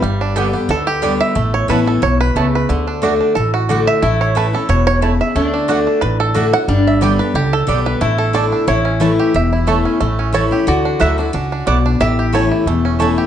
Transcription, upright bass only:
X:1
M:4/4
L:1/8
Q:"Swing" 1/4=180
K:D
V:1 name="Upright bass" clef=bass
G,,,4 D,,4 | A,,,2 A,,,2 B,,,2 C,,2 | D,,4 A,,,4 | A,,,4 E,,,4 |
D,,4 A,,,4 | G,,,4 C,,2 B,,,2 | A,,,4 A,,,4 | E,,,4 A,,,4 |
D,,2 D,,2 C,,2 B,,,2 | A,,,4 E,,,4 |]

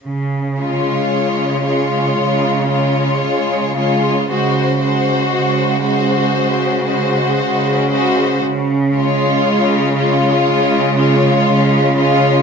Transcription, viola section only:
X:1
M:4/4
L:1/8
Q:1/4=58
K:Db
V:1 name="Viola section" clef=bass
z A,2 A,2 A,2 A, | A, A,2 A,2 A,2 A, | z A,2 A,2 A,2 A, |]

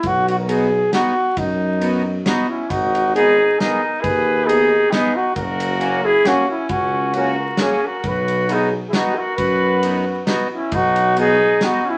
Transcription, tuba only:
X:1
M:3/4
L:1/8
Q:"Swing" 1/4=135
K:B
V:1 name="Tuba" clef=bass
B,,,6 | F,,6 | G,,,6 | D,,6 |
F,,,6 | C,,6 | B,,,6 | F,,6 |
B,,,6 |]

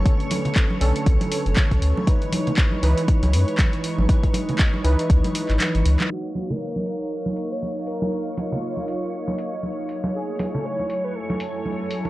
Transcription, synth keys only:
X:1
M:4/4
L:1/8
Q:"Swing 16ths" 1/4=119
K:Ebphr
V:1 name="Synth keys"
[=D,^C=A]3 [D,CA]4- [D,CA] | [F,Ec]3 [F,Ec]4- [F,Ec] | [F,Ec]3 [F,Ec]4- [F,Ec] | z8 |
z8 | z8 |]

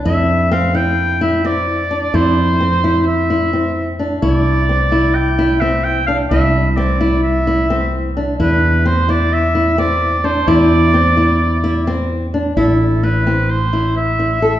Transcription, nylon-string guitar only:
X:1
M:9/8
L:1/8
Q:3/8=86
K:Am
V:1 name="Nylon-string guitar"
E2 C E2 E C2 D | E2 C E2 E C2 D | E2 C E2 E C2 D | E2 C E2 E C2 D |
E2 C E2 E C2 D | E2 C E2 E C2 D | E2 E C2 E2 E A |]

